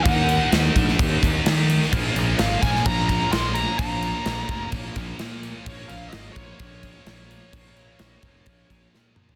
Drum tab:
CC |x-x-x-x-x-x-x-x-|x-x-x-x-x-x-x-x-|x-x-x-x-x-x-x-x-|x-x-x-x-x-x-x-x-|
SD |----o--o----o--o|----o--o----o---|----o-------o---|----o-------o---|
T2 |----------------|----------------|----------------|----------------|
FT |----------------|----------------|----------------|----------------|
BD |o-----o-o-o-----|o-----o-o-o-----|o-----o-o-o-----|o-----o-o-o-----|

CC |x-x-x-x-x-x-----|
SD |----o-------o---|
T2 |--------------o-|
FT |---------------o|
BD |o-----o-o-o-----|